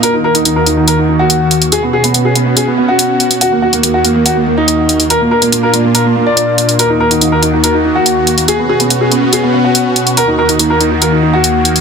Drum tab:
HH |x--xx-x-x---x-xx|x--xx-x-x---x-xx|x--xx-x-x---x-xx|x--xx-x-x---x-xx|

HH |x--xx-x-x---x-xx|x--xx-x-x---x-xx|x--xx-x-x---x-xx|